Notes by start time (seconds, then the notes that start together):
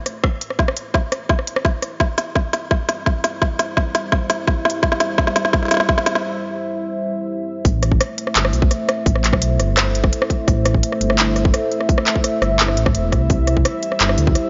Already playing: A3 E4 C5 E5
0.06 cross-stick, closed hi-hat
0.24 kick, cross-stick, snare
0.41 closed hi-hat
0.50 cross-stick
0.59 kick, snare
0.68 cross-stick
0.77 closed hi-hat
0.94 kick, cross-stick, snare
1.12 cross-stick, closed hi-hat
1.29 kick, snare
1.39 cross-stick
1.47 closed hi-hat
1.56 cross-stick
1.65 kick, snare
1.82 cross-stick, closed hi-hat
2.00 G3 E5, kick, snare
2.18 snare, closed hi-hat
2.35 kick, snare
2.53 snare, closed hi-hat
2.71 kick, snare
2.89 snare, closed hi-hat
3.06 kick, snare
3.24 snare, closed hi-hat
3.42 kick, snare
3.59 snare, closed hi-hat
3.77 kick, snare
3.95 snare, closed hi-hat
4.12 kick, snare
4.30 snare, closed hi-hat
4.47 kick, snare
4.65 snare
4.70 closed hi-hat
4.83 kick, snare
4.92 snare
5.00 snare, closed hi-hat
5.18 kick, snare
5.27 snare
5.36 snare, closed hi-hat
5.45 snare
5.53 kick, snare
5.63 snare
5.65 snare
5.68 snare
5.71 snare, closed hi-hat
5.74 snare
5.77 snare
5.80 snare
5.89 kick, snare
5.98 snare
6.06 snare, closed hi-hat
6.15 snare
7.65 A1 A3 E4 C5 E5, kick, open hi-hat
7.83 cross-stick, closed hi-hat
7.92 kick
8.01 cross-stick, closed hi-hat
8.18 closed hi-hat
8.27 cross-stick
8.36 G1, clap, closed hi-hat
8.45 cross-stick
8.53 B1, open hi-hat
8.62 kick
8.71 cross-stick, closed hi-hat
8.89 cross-stick, closed hi-hat
9.06 A1, kick, open hi-hat
9.15 cross-stick
9.24 clap, closed hi-hat
9.33 B1, kick, cross-stick
9.42 closed hi-hat
9.59 G1, cross-stick, closed hi-hat
9.77 cross-stick, clap, closed hi-hat
9.95 closed hi-hat
10.04 kick, cross-stick
10.13 closed hi-hat
10.22 cross-stick
10.30 kick, closed hi-hat
10.48 A1, kick, cross-stick, open hi-hat
10.65 cross-stick, closed hi-hat
10.74 kick
10.83 closed hi-hat
10.92 cross-stick
11.01 G1, closed hi-hat
11.10 cross-stick
11.18 clap, closed hi-hat
11.36 cross-stick, open hi-hat
11.45 kick
11.54 cross-stick, closed hi-hat
11.72 closed hi-hat
11.81 cross-stick
11.89 kick, open hi-hat
11.98 cross-stick
12.07 clap, closed hi-hat
12.16 kick
12.24 cross-stick, closed hi-hat
12.42 G1, cross-stick, open hi-hat
12.59 clap, closed hi-hat
12.68 cross-stick
12.77 A1, closed hi-hat
12.86 kick, cross-stick
12.95 E1, closed hi-hat
13.12 C2, kick, cross-stick, closed hi-hat
13.30 C2 G3 C5, kick, open hi-hat
13.47 cross-stick, closed hi-hat
13.57 kick
13.65 cross-stick, closed hi-hat
13.83 closed hi-hat
13.92 cross-stick
14.00 G1, clap, closed hi-hat
14.09 cross-stick
14.18 D2, open hi-hat
14.27 kick
14.35 cross-stick, closed hi-hat